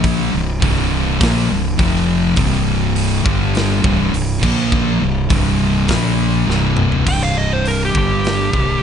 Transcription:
Already playing: fingered electric bass A#1, distorted electric guitar A#2 F3 A#3
0.04 kick, open hi-hat
0.32 fingered electric bass C1, distorted electric guitar C2 G2
0.60 fingered electric bass C1, distorted electric guitar C2 G2 C3, kick, open hi-hat
1.19 fingered electric bass A#1, distorted electric guitar A#2 F3 A#3, kick, open hi-hat
1.23 snare
1.48 fingered electric bass C1, distorted electric guitar C2 G2
1.78 fingered electric bass F1, distorted electric guitar F2 C3 F3, kick, open hi-hat
1.96 snare
2.35 fingered electric bass C1, distorted electric guitar C2 G2 C3, kick, open hi-hat
2.96 open hi-hat
3.23 fingered electric bass G1, distorted electric guitar G2 D3 G3, kick
3.55 snare, open hi-hat
3.83 fingered electric bass C1, distorted electric guitar C2 G2 C3, kick
4.11 fingered electric bass C1, distorted electric guitar C2 G2, open hi-hat
4.40 fingered electric bass A#1, distorted electric guitar A#2 F3 A#3, kick, crash
4.72 kick
4.99 fingered electric bass C1, distorted electric guitar C2 G2
5.29 fingered electric bass C1, distorted electric guitar C2 G2 C3, kick, open hi-hat
5.88 fingered electric bass A#1, distorted electric guitar A#2 F3 A#3, kick, snare, open hi-hat
6.46 fingered electric bass C1, distorted electric guitar C2 G2 C3, snare
6.77 mid tom
6.92 floor tom
7.04 fingered electric bass C1, distorted electric guitar C2 G2 C3, kick, crash
7.09 lead electric guitar G5
7.23 lead electric guitar F5
7.38 lead electric guitar D#5
7.53 lead electric guitar C5
7.65 lead electric guitar A#4, open hi-hat
7.85 lead electric guitar G4
7.93 fingered electric bass G1, distorted electric guitar G2 D3 G3, kick
7.98 lead electric guitar G4
8.25 snare, open hi-hat
8.51 fingered electric bass C1, distorted electric guitar C2 G2 C3, kick

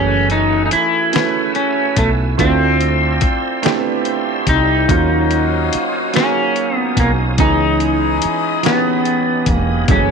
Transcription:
Already playing: fretless electric bass F#1, grand piano E3 A3 C#4 F#4 G#4, tonewheel organ A3 F#5 G#5 E6, clean electric guitar C#4
0.30 clean electric guitar D#4, closed hi-hat
0.66 clean electric guitar D#4
0.71 clean electric guitar E4, muted fretless electric bass stroke, closed hi-hat
1.12 grand piano A3 C#4 E4 F#4 B4, snare, closed hi-hat
1.55 clean electric guitar C#4, closed hi-hat
1.97 fretless electric bass B1, clean electric guitar A3, kick, closed hi-hat
2.37 fretless electric bass D2, grand piano A3 C4 D4 E4 F4, clean electric guitar C4, tonewheel organ C5 D5 C6 E6, kick, closed hi-hat
2.81 closed hi-hat
3.21 muted fretless electric bass stroke, kick, closed hi-hat
3.62 grand piano A3 C4 D4 E4 G4, snare, closed hi-hat
3.76 clean electric guitar B3
4.05 closed hi-hat
4.47 fretless electric bass C2, clean electric guitar D#4, kick, closed hi-hat
4.88 fretless electric bass D#2, grand piano F#3 A#3 C#4 D#4 F4, horn section A#3 C#4 F#4, tonewheel organ C#5 F5 D#6, kick, closed hi-hat
5.31 closed hi-hat
5.73 muted fretless electric bass stroke, closed hi-hat
6.13 grand piano F#3 A#3 C#4 D#4 F#4, clean electric guitar C#4, snare, closed hi-hat
6.22 grand piano G#4
6.56 closed hi-hat
6.77 clean electric guitar B3
6.97 fretless electric bass B1, clean electric guitar A#3, kick, closed hi-hat
7.38 fretless electric bass C#2, grand piano E3 B3 C#4 D#4 G#4, horn section E3 G#3 G#4, clean electric guitar D#4, tonewheel organ C#5 D#5 B5, kick, closed hi-hat
7.80 closed hi-hat
8.22 muted fretless electric bass stroke, closed hi-hat
8.63 grand piano E3 B3 C#4 D#4 G4, clean electric guitar B3, snare, closed hi-hat
8.72 grand piano G#4
9.05 closed hi-hat
9.46 fretless electric bass E1, clean electric guitar A#3, kick, closed hi-hat
9.88 fretless electric bass F#1, horn section E3 C#4 G#4, grand piano E3 F#3 A3 C#4 G#4, tonewheel organ A3 F#5 G#5 E6, clean electric guitar C#4, kick, closed hi-hat

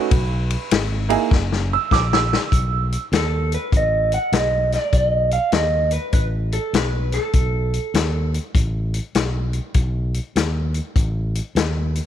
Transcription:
Already playing: upright piano B4
0.11 fingered electric bass B1, kick, ride
0.50 ride
0.71 fingered electric bass G#1, snare, ride
1.09 upright piano A#3 D#4 E4 G#4, ride
1.31 fingered electric bass F#1, kick, snare
1.52 snare
1.73 upright piano E6
1.91 fingered electric bass A#1, upright piano D6, kick, snare
2.13 upright piano E6, snare
2.33 snare
2.52 fingered electric bass B1, kick, closed hi-hat
2.92 closed hi-hat
3.12 fingered electric bass D#2, clean electric guitar A4, snare, closed hi-hat
3.52 clean electric guitar B4, closed hi-hat
3.72 fingered electric bass A1, kick, closed hi-hat
3.77 clean electric guitar D#5
4.12 clean electric guitar F#5, closed hi-hat
4.32 fingered electric bass B1, clean electric guitar D#5, snare, closed hi-hat
4.72 clean electric guitar D5, snare, closed hi-hat
4.93 fingered electric bass B1, clean electric guitar D#5, kick, closed hi-hat
5.31 clean electric guitar F5, closed hi-hat
5.52 fingered electric bass D#2, clean electric guitar D#5, snare, closed hi-hat
5.91 clean electric guitar B4, closed hi-hat
6.13 fingered electric bass A1, clean electric guitar B4, kick, closed hi-hat
6.52 clean electric guitar A4, closed hi-hat
6.73 fingered electric bass B1, clean electric guitar B4, snare, closed hi-hat
7.12 clean electric guitar A4, snare, closed hi-hat
7.33 fingered electric bass B1, kick, closed hi-hat
7.74 closed hi-hat
7.94 fingered electric bass D#2, snare, closed hi-hat
8.34 closed hi-hat
8.55 fingered electric bass A1, kick, closed hi-hat
8.94 closed hi-hat
9.15 fingered electric bass B1, snare, closed hi-hat
9.53 closed hi-hat
9.74 fingered electric bass B1, kick, closed hi-hat
10.14 closed hi-hat
10.36 fingered electric bass D#2, snare, closed hi-hat
10.74 closed hi-hat
10.96 fingered electric bass A1, kick, closed hi-hat
11.35 closed hi-hat
11.55 fingered electric bass D#2, snare, closed hi-hat
11.95 closed hi-hat

